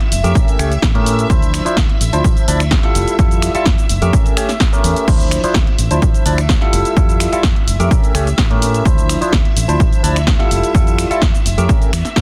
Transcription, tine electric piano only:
0.24 A3 C#4 G4 A#4
0.59 A3 C#4 G4 C#5
0.94 A3 C#4 G4 A#4
1.29 F3 E4 C5
1.65 F3 D4 E4 C5
2.13 F3 D4 E4 C5
2.48 F3 D4 E4 D5
2.83 G3 E4 F4 A4
3.19 G3 E4 F4 A4
3.54 G3 E4 F4 A4
4.01 A3 C#4 G4 A#4
4.37 A3 C#4 G4 C#5
4.72 A3 C#4 G4 A#4
5.07 F3 E4 C5
5.43 F3 D4 E4 C5
5.90 F3 D4 E4 C5
6.25 F3 D4 E4 D5
6.61 G3 E4 F4 A4
6.96 G3 E4 F4 A4
7.32 G3 E4 F4 A4
7.79 A3 C#4 G4 A#4
8.14 A3 C#4 G4 C#5
8.50 A3 C#4 G4 A#4
8.86 E4 C5
9.21 F3 D4 E4 C5
9.68 F3 D4 E4 C5
10.03 F3 D4 E4 D5
10.39 G3 E4 F4 A4
10.74 G3 E4 F4 A4
11.10 G3 E4 F4 A4
11.57 A3 C#4 G4 A#4
12.16 A3 C#4 G4 A#4

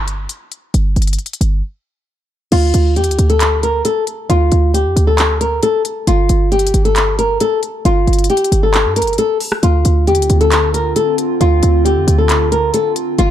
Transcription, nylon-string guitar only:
2.52 F4
2.96 G4
3.30 A4
3.63 A#4
3.85 A4
4.29 F4
4.74 G4
5.07 A4
5.41 A#4
5.63 A4
6.08 F4
6.52 G4
6.85 A4
7.19 A#4
7.41 A4
7.85 F4
8.30 G4
8.63 A4
8.96 A#4
9.18 A4
9.63 F4
10.07 G4
10.41 A4
10.74 A#4
10.96 A4
11.41 F4
11.85 G4
12.18 A4
12.52 A#4
12.74 A4
13.19 F4

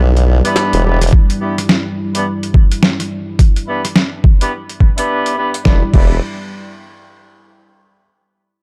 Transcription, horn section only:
0.45 B3 D4 E4 G4 B4
0.84 B3 D4 E4 G4 B4
1.41 B3 D4 E4 G4 B4
2.15 B3 D4 E4 G4 B4
3.67 B3 D4 E4 G4 B4
4.41 B3 D4 E4 G4 B4
4.97 B3 D4 E4 G4 B4
5.37 B3 D4 E4 G4 B4
5.65 B3 D4 E4 G4 B4
5.93 B3 D4 E4 G4 B4

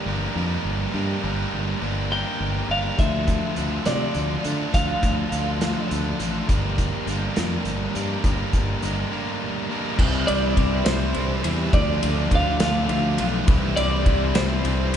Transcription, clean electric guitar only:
2.12 G5
2.71 F5
2.99 E5
3.86 D5
4.74 F5
10.27 D5
10.85 C5
11.74 D5
12.35 F5
12.64 F5
13.76 D5
14.35 C5

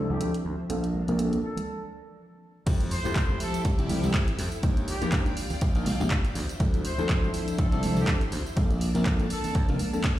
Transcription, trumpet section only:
0.09 G4
1.44 A4
2.91 C5
3.40 A4
4.88 G4
6.85 C5
7.58 A4
7.97 G4
9.30 A4

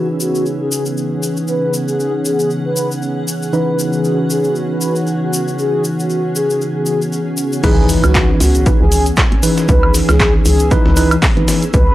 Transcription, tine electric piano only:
Already playing: E3 C#4 D#4 B4
3.53 E3 C#4 D#4 B4
7.64 E3 D#4 B4
8.66 E3 D#4 B4
9.43 E3 D#4 B4
10.71 E3 D#4 B4
10.97 E3 D#4 B4
11.37 E3 D#4 B4

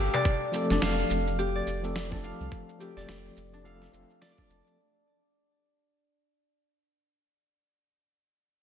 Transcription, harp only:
Already playing: D4 G4 D5 F5
0.14 D5
0.71 D4
0.82 F5
1.39 G4
1.55 D5
2.12 D4
2.24 F5
2.80 G4
2.97 D5
3.53 D4
3.65 F5
4.21 D5
4.38 D4

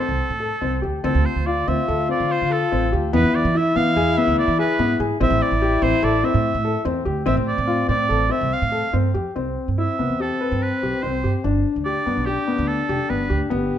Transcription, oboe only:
0.00 A4
1.04 A4
1.26 C5
1.47 D5
1.68 E5
2.11 D5
2.32 C5
2.52 A4
3.15 B4
3.35 D5
3.57 E5
3.77 F5
4.18 E5
4.39 D5
4.60 B4
5.22 E5
5.42 D5
5.83 C5
6.04 D5
6.25 E5
7.27 E5
7.48 D5
7.89 D5
8.32 E5
8.53 F5
9.79 E5
10.21 A4
10.62 B4
11.03 C5
11.85 D5
12.26 G4
12.68 A4
13.10 B4

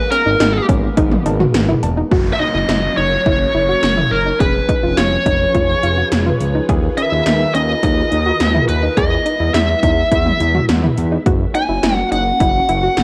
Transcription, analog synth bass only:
0.26 G#1
0.40 G#1
0.69 G#1
0.97 G#1
1.26 G#1
1.54 G#1
1.83 E1
2.12 F#1
2.54 F#1
2.69 F#1
2.97 F#1
3.26 F#1
3.54 F#1
3.83 F#1
4.12 F#1
4.40 F1
4.83 F1
4.97 F1
5.26 F1
5.55 F1
5.83 F1
6.12 F1
6.40 C#2
6.69 D#2
7.12 D#2
7.26 D#2
7.54 D#2
7.83 D#2
8.12 D#2
8.40 D#2
8.69 D#2
8.97 E2
9.40 E2
9.55 E2
9.83 E2
10.12 E2
10.40 E2
10.69 E2
10.97 E2
11.26 F#1
11.69 F#1
11.83 F#1
12.12 F#1
12.40 F#1
12.69 F#1
12.97 F#1

